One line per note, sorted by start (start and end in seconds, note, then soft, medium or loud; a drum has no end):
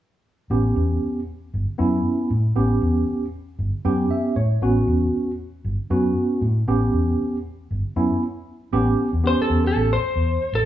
0.50 0.71 A1 medium
0.50 1.19 B3 medium
0.50 1.19 C#4 medium
0.50 1.19 G4 medium
0.76 0.97 E2 medium
1.54 1.65 G1 medium
1.78 2.00 F#2 medium
1.78 2.29 B3 medium
1.78 2.29 C#4 medium
1.78 2.29 E4 medium
2.30 2.51 A2 medium
2.56 2.77 A1 medium
2.56 3.24 B3 medium
2.56 3.24 C#4 medium
2.56 3.25 G4 medium
2.82 3.03 E2 medium
3.59 3.70 G1 medium
3.85 4.05 F#2 medium
3.85 4.35 B3 medium
3.85 4.35 C#4 medium
3.85 4.36 G4 medium
3.85 4.09 G5 medium
4.11 4.35 E5 medium
4.36 4.57 A2 medium
4.36 4.60 C#5 medium
4.62 4.82 A1 medium
4.62 5.30 B3 medium
4.62 5.30 C#4 medium
4.62 5.31 F#4 medium
4.87 5.08 E2 medium
5.64 5.76 G1 medium
5.90 6.11 F#2 medium
5.90 6.41 B3 medium
5.90 6.41 C#4 medium
5.90 6.41 F#4 medium
6.41 6.62 A2 medium
6.67 6.88 A1 medium
6.67 7.36 B3 medium
6.67 7.36 C#4 medium
6.67 7.36 G4 medium
6.93 7.14 E2 medium
7.71 7.82 G1 medium
7.96 8.08 F#2 medium
7.96 8.22 B3 medium
7.96 8.22 C#4 medium
7.96 8.22 E4 medium
8.73 8.94 A1 loud
8.73 9.07 B3 medium
8.73 9.07 C#4 medium
8.73 9.07 G4 loud
9.13 9.34 E2 medium
9.23 9.92 B3 medium
9.23 9.92 C#4 medium
9.23 9.92 G4 medium
9.23 9.40 C5 medium
9.38 9.65 A4 medium
9.38 muted fingered electric bass stroke soft
9.50 9.70 E2 loud
9.67 9.91 A4 medium
9.76 9.96 A1 loud
9.93 10.52 C5 medium
10.16 10.36 E2 medium
10.53 10.64 A1 medium
10.53 10.65 A4 medium